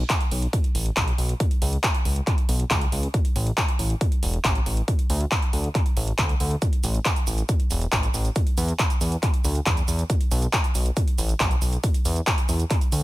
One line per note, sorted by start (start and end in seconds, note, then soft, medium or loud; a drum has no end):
0.10 kick loud
0.10 clap loud
0.10 closed hi-hat medium
0.21 closed hi-hat medium
0.31 0.47 B1 medium
0.31 open hi-hat medium
0.42 closed hi-hat medium
0.53 kick loud
0.53 closed hi-hat medium
0.64 closed hi-hat soft
0.75 0.90 A1 medium
0.75 open hi-hat loud
0.86 closed hi-hat medium
0.97 1.12 B1 medium
0.97 kick loud
0.97 clap loud
0.97 closed hi-hat medium
1.08 closed hi-hat medium
1.18 1.34 B1 medium
1.18 open hi-hat medium
1.29 closed hi-hat medium
1.40 kick loud
1.40 closed hi-hat medium
1.51 closed hi-hat medium
1.62 1.77 C#2 loud
1.62 open hi-hat loud
1.73 closed hi-hat medium
1.84 kick loud
1.84 clap loud
1.84 closed hi-hat medium
1.94 closed hi-hat medium
2.05 2.21 C#2 medium
2.05 open hi-hat medium
2.16 closed hi-hat medium
2.27 kick loud
2.27 clap soft
2.27 closed hi-hat medium
2.38 closed hi-hat medium
2.49 2.64 B1 medium
2.49 open hi-hat loud
2.60 closed hi-hat medium
2.71 2.86 C#2 medium
2.71 kick loud
2.71 clap loud
2.71 closed hi-hat medium
2.81 closed hi-hat medium
2.92 3.08 C#2 medium
2.92 open hi-hat medium
3.03 closed hi-hat medium
3.14 kick loud
3.14 closed hi-hat medium
3.25 closed hi-hat medium
3.36 3.51 A1 medium
3.36 open hi-hat loud
3.47 closed hi-hat medium
3.58 kick loud
3.58 clap loud
3.58 closed hi-hat medium
3.68 closed hi-hat medium
3.79 3.95 A1 medium
3.79 open hi-hat medium
3.90 closed hi-hat medium
4.01 kick loud
4.01 closed hi-hat medium
4.12 closed hi-hat soft
4.23 4.38 E1 medium
4.23 open hi-hat loud
4.34 closed hi-hat medium
4.44 4.60 A1 medium
4.44 kick loud
4.44 clap loud
4.44 closed hi-hat medium
4.55 closed hi-hat medium
4.66 4.82 A1 medium
4.66 open hi-hat medium
4.77 closed hi-hat soft
4.88 kick loud
4.88 closed hi-hat medium
4.99 closed hi-hat medium
5.10 5.25 D2 loud
5.10 open hi-hat loud
5.21 closed hi-hat medium
5.31 kick loud
5.31 clap loud
5.31 closed hi-hat medium
5.42 closed hi-hat soft
5.53 5.69 D2 medium
5.53 open hi-hat medium
5.64 closed hi-hat soft
5.75 kick loud
5.75 clap soft
5.75 closed hi-hat medium
5.86 closed hi-hat soft
5.97 6.12 A1 medium
5.97 open hi-hat loud
6.08 closed hi-hat medium
6.18 6.34 D2 medium
6.18 kick loud
6.18 clap loud
6.18 closed hi-hat medium
6.29 closed hi-hat soft
6.40 6.56 D2 medium
6.40 open hi-hat medium
6.51 closed hi-hat soft
6.62 kick loud
6.62 closed hi-hat medium
6.62 shaker soft
6.73 closed hi-hat soft
6.84 6.99 A1 loud
6.84 open hi-hat loud
6.84 shaker medium
6.94 closed hi-hat medium
6.94 shaker soft
7.05 kick loud
7.05 clap loud
7.05 closed hi-hat medium
7.05 shaker soft
7.16 closed hi-hat medium
7.16 shaker soft
7.27 7.43 A1 medium
7.27 open hi-hat medium
7.27 shaker medium
7.38 closed hi-hat soft
7.38 shaker soft
7.49 kick loud
7.49 closed hi-hat medium
7.49 shaker soft
7.60 closed hi-hat medium
7.71 7.86 E1 medium
7.71 open hi-hat loud
7.71 shaker medium
7.81 closed hi-hat soft
7.81 shaker soft
7.92 8.08 A1 medium
7.92 kick loud
7.92 clap loud
7.92 closed hi-hat medium
7.92 shaker soft
8.03 closed hi-hat soft
8.03 shaker soft
8.14 8.30 A1 medium
8.14 open hi-hat medium
8.14 shaker medium
8.25 closed hi-hat soft
8.25 shaker soft
8.36 kick loud
8.36 closed hi-hat medium
8.36 shaker soft
8.47 closed hi-hat medium
8.58 8.73 E2 loud
8.58 open hi-hat loud
8.58 shaker medium
8.68 closed hi-hat medium
8.68 shaker soft
8.79 kick loud
8.79 clap loud
8.79 closed hi-hat medium
8.79 shaker soft
8.90 closed hi-hat medium
8.90 shaker soft
9.01 9.17 E2 medium
9.01 open hi-hat medium
9.01 shaker medium
9.12 closed hi-hat medium
9.12 shaker soft
9.23 kick loud
9.23 clap soft
9.23 closed hi-hat medium
9.23 shaker soft
9.34 closed hi-hat medium
9.44 9.60 D2 medium
9.44 open hi-hat loud
9.44 shaker medium
9.55 closed hi-hat medium
9.55 shaker soft
9.66 9.82 E2 medium
9.66 kick loud
9.66 clap loud
9.66 closed hi-hat medium
9.66 shaker soft
9.77 closed hi-hat medium
9.77 shaker soft
9.88 10.04 E2 medium
9.88 open hi-hat medium
9.88 shaker medium
9.99 closed hi-hat medium
9.99 shaker soft
10.10 kick loud
10.10 closed hi-hat loud
10.10 shaker soft
10.21 closed hi-hat medium
10.31 10.47 B1 loud
10.31 open hi-hat loud
10.31 shaker medium
10.42 closed hi-hat medium
10.42 shaker soft
10.53 kick loud
10.53 clap loud
10.53 closed hi-hat medium
10.53 shaker soft
10.64 closed hi-hat medium
10.64 shaker soft
10.75 10.91 B1 medium
10.75 open hi-hat medium
10.75 shaker medium
10.86 closed hi-hat medium
10.86 shaker soft
10.97 kick loud
10.97 closed hi-hat loud
10.97 shaker soft
11.08 closed hi-hat medium
11.18 11.34 A1 loud
11.18 open hi-hat loud
11.18 shaker medium
11.29 closed hi-hat medium
11.29 shaker soft
11.40 11.56 B1 loud
11.40 kick loud
11.40 clap loud
11.40 closed hi-hat medium
11.40 shaker soft
11.51 closed hi-hat medium
11.51 shaker soft
11.62 11.77 B1 medium
11.62 open hi-hat medium
11.62 shaker medium
11.73 closed hi-hat medium
11.73 shaker soft
11.84 kick loud
11.84 closed hi-hat loud
11.84 shaker soft
11.94 closed hi-hat medium
11.94 shaker soft
12.05 12.21 E2 loud
12.05 open hi-hat loud
12.05 shaker medium
12.16 closed hi-hat medium
12.16 shaker soft
12.27 kick loud
12.27 clap loud
12.27 closed hi-hat medium
12.27 shaker soft
12.38 closed hi-hat medium
12.38 shaker soft
12.49 12.64 E2 medium
12.49 open hi-hat medium
12.49 shaker medium
12.60 closed hi-hat medium
12.60 shaker soft
12.70 kick loud
12.70 clap soft
12.70 closed hi-hat loud
12.70 shaker soft
12.81 closed hi-hat medium
12.81 shaker soft
12.92 13.03 D2 medium
12.92 open hi-hat loud
12.92 shaker medium